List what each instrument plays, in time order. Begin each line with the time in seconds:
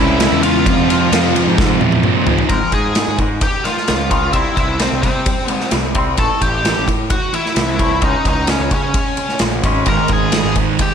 Already playing: picked electric bass C2, distorted electric guitar C#3 G#3 C#4 E4, overdriven electric guitar C#3 G#3 C#4, lead electric guitar E4 E5
0.00 distorted electric guitar C#3 G#3 C#4
0.19 distorted electric guitar C#3 G#3 C#4 E4, snare, ride
0.32 picked electric bass E2
0.43 distorted electric guitar C#3 G#3 C#4 E4, lead electric guitar F4 F5, ride
0.65 picked electric bass F2, distorted electric guitar F2 C3 F3 G#3 C4 F4, kick, ride
0.88 distorted electric guitar F2 F3 G#3 C4 F4, ride
0.92 distorted electric guitar C3 F3
1.12 picked electric bass F2, distorted electric guitar F2 C3 F3 G#3 C4 F4, snare, ride
1.34 distorted electric guitar F2 C3 F3 G#3 C4 F4, ride
1.39 distorted electric guitar F3
1.47 picked electric bass G#2
1.57 distorted electric guitar F2 C3 F3 G#3 C4 F4, kick, snare
1.62 distorted electric guitar F3
1.81 picked electric bass E2, distorted electric guitar F2 C3 F3 G#3 C4 F4, high tom
1.92 high tom
2.03 distorted electric guitar F2 C3 F3 G#3 C4 F4, picked electric bass A#2, mid tom
2.26 distorted electric guitar F2 C3 F3 G#3 C4 F4, picked electric bass G#2, floor tom
2.38 floor tom
2.49 picked electric bass G#2, clean electric guitar G#2 D#3 G#3, lead electric guitar A#4 A#5, kick, ride
2.72 picked electric bass G#2, clean electric guitar G#2 D#3, lead electric guitar G#4 G#5, kick, ride
2.95 clean electric guitar G#2 D#3, snare, ride
3.08 picked electric bass G#2
3.18 picked electric bass G#2, clean electric guitar G#2 D#3, kick, ride
3.41 clean electric guitar G#2 D#3, lead electric guitar G4 G5, kick, ride
3.64 clean electric guitar G#2 D#3, lead electric guitar F4 F5, snare, ride
3.77 snare
3.88 picked electric bass C#2, clean electric guitar G#2 D#3, snare, ride
4.10 clean electric guitar G#2 D#3 G#3, kick, ride
4.33 picked electric bass C2, clean electric guitar C3 G3 C4, lead electric guitar E4 E5, kick, ride
4.56 picked electric bass C2, clean electric guitar C3 G3, lead electric guitar E4 E5, kick, ride
4.79 clean electric guitar C3 G3, lead electric guitar C4 C5, snare, ride
4.92 picked electric bass C2
5.02 picked electric bass C3, clean electric guitar C3 G3, lead electric guitar C4 C5, kick, ride
5.26 clean electric guitar C3 G3, kick, ride
5.48 clean electric guitar C3 G3, lead electric guitar A#4, ride
5.60 snare
5.71 picked electric bass C2, clean electric guitar C3 G3, snare, ride
5.95 clean electric guitar C3 G3 C4, kick, ride
6.17 picked electric bass A1, clean electric guitar A2 E3 A3, lead electric guitar A4 A5, kick, ride
6.41 picked electric bass A1, clean electric guitar A2 E3, lead electric guitar G4 G5, kick, ride
6.64 clean electric guitar A2 E3, snare, ride
6.78 picked electric bass A1
6.87 clean electric guitar A2 E3, picked electric bass A2, kick, ride
7.10 clean electric guitar A2 E3, lead electric guitar F#4 F#5, kick, ride
7.33 clean electric guitar A2 E3, lead electric guitar E4 E5, ride
7.46 snare
7.56 picked electric bass C2, clean electric guitar A2 E3, snare, ride
7.79 clean electric guitar A2 E3 A3, kick, ride
8.01 picked electric bass C#2, clean electric guitar C#3 G#3 C#4, lead electric guitar D#4 D#5, kick, ride
8.25 picked electric bass C#2, clean electric guitar C#3 G#3, kick, ride
8.29 lead electric guitar D#4 D#5
8.47 clean electric guitar C#3 G#3, lead electric guitar C#4 C#5, snare, ride
8.60 picked electric bass C#2
8.71 clean electric guitar C#3 G#3, picked electric bass C#3, lead electric guitar C#4 C#5, kick, ride
8.94 clean electric guitar C#3 G#3, kick, ride
9.17 clean electric guitar C#3 G#3, ride
9.29 snare
9.39 picked electric bass A#1, clean electric guitar C#3 G#3, snare, ride
9.63 picked electric bass G#1, clean electric guitar C#3 G#3 C#4, kick, ride
9.86 picked electric bass G#1, clean electric guitar G#2 D#3 G#3, distorted electric guitar G#2 D#3, lead electric guitar A#4 A#5, kick, ride
9.90 distorted electric guitar G#3
10.08 picked electric bass G#1, clean electric guitar G#2 D#3, kick, ride
10.12 lead electric guitar G#4 G#5
10.32 clean electric guitar G#2 D#3, snare, ride
10.44 picked electric bass G#1
10.56 picked electric bass G#2, clean electric guitar G#2 D#3, kick, ride
10.79 distorted electric guitar G#2 D#3 G#3, clean electric guitar G#2 D#3, lead electric guitar G4 G5, kick, ride